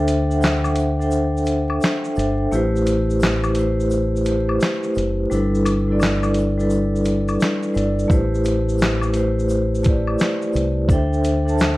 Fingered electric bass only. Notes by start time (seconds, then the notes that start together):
Already playing: D2
2.17 G1
2.52 A1
4.97 F#1
5.31 G1
7.76 G1
8.10 A1
10.55 C2
10.89 D2